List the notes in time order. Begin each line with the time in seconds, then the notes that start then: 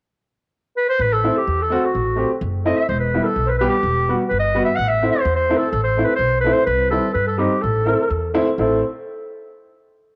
0.77 B4
0.89 C5
0.99 A1 B4
1.13 A4
1.24 A3 C4 E4
1.37 G4
1.47 E2
1.62 A4
1.70 A3 C4 F#4 A4
1.85 F#4
1.95 A1
2.16 A3 C4 G4
2.41 F#1
2.65 A3 C4 E4 D#5
2.78 E5
2.89 E1 C5
2.99 B4
3.14 G3 B3 E4
3.24 A4
3.36 B1
3.46 B4 C5
3.58 G3 B3 G4 B4
3.69 G4
3.83 E1
4.09 G3 B3 F#4
4.28 G1 B4
4.39 D#5
4.55 G3 B3 F#4
4.64 E5
4.75 A1 F#5
4.88 E5
5.02 A3 C4 E4
5.11 C5
5.25 E2
5.35 C5
5.49 A3 C4 E4
5.57 A4
5.71 A1 A4
5.83 C5
5.97 A3 C4 E4
6.05 B4
6.16 B1 C5
6.40 A3 B4
6.46 C4 E4
6.53 C5
6.65 C2 B4
6.90 G3 C4 E4 A4
7.14 G2 B4
7.27 A4
7.38 G3 C4 D#4 G4
7.61 A1 A4
7.86 A3 C4 E4
8.10 E2
8.34 A3 C4 E4
8.58 A1 A3 C4 E4 A4